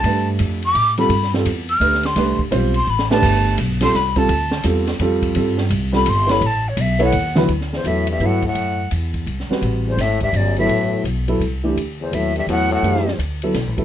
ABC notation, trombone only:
X:1
M:3/4
L:1/8
Q:"Swing" 1/4=169
K:Gmix
V:1 name="Trombone" clef=bass
z6 | z6 | z6 | z6 |
z6 | z6 | z6 | [K:Dmix] z E,, A,, G,, A,, A,,- |
A,,2 z4 | z E,, A,, G,, F,, A,,- | A,,2 z4 | z E,, A,, G,, A,, A,,- |
A,,2 z4 |]